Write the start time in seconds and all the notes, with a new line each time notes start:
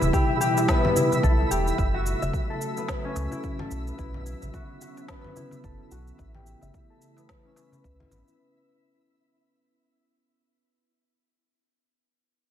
Already playing: B2 E3 G3 B3 E4 G4 A4 E5
0.01 D1, darbuka ka, darbuka dum, cabasa
0.13 G4, kick, cabasa
0.29 darbuka ka
0.41 G4, cabasa
0.57 darbuka ka, darbuka tek, cabasa
0.68 B3, kick, snare, cabasa
0.84 darbuka ka, darbuka tek, low conga
0.96 E4, darbuka dum, cabasa
1.12 darbuka tek, darbuka dum, cabasa
1.23 B1 A4, kick, cabasa
1.40 darbuka tek
1.51 E1 G4, cabasa
1.67 cabasa
1.78 F#1 C#3 F#3 A3 F#4 A4 E5, kick, darbuka ka, cabasa
1.94 F#4
2.06 cabasa
2.22 E1 E5, darbuka ka, darbuka dum, cabasa
2.33 kick, cabasa
2.50 A4, darbuka ka
2.61 cabasa
2.77 B3, darbuka ka, cabasa
2.88 kick, snare, cabasa
3.04 C#4, darbuka tek
3.16 C#2, darbuka tek, cabasa
3.32 E4, darbuka tek, darbuka dum, cabasa
3.44 kick, cabasa
3.59 A4, low conga
3.71 B1, darbuka tek, cabasa
3.87 B3, cabasa
3.98 B1 D3 B3 C#4 E4, kick, darbuka ka, cabasa
4.14 low conga
4.26 E4, cabasa
4.42 A1, darbuka ka, darbuka dum, cabasa
4.54 F#4, kick, cabasa
4.70 darbuka ka
4.81 F#4, cabasa
4.97 darbuka ka, darbuka tek, cabasa
5.08 B3, kick, snare, cabasa
5.24 darbuka ka, darbuka tek, low conga
5.36 E4, darbuka dum, cabasa
5.51 darbuka tek, darbuka dum, cabasa
5.64 F#1 A4, kick, cabasa
5.79 darbuka tek
5.91 B1 F#4, cabasa
6.07 cabasa
6.18 A1 C#3 E3 A3 E4 E5, kick, darbuka ka, cabasa
6.35 G4, low conga
6.46 cabasa
6.61 G1 E5, darbuka ka, darbuka dum, cabasa
6.74 kick, cabasa
6.90 A4, darbuka ka
7.02 cabasa
7.17 B3, darbuka ka, darbuka tek, cabasa
7.29 kick, snare, cabasa
7.45 C#4, darbuka tek
7.56 E4, darbuka tek, cabasa
7.72 B4, darbuka tek, darbuka dum, cabasa
7.84 C#2, kick, cabasa
8.00 E4, low conga
8.11 A1 B3, darbuka tek, low conga, cabasa
8.27 E4, cabasa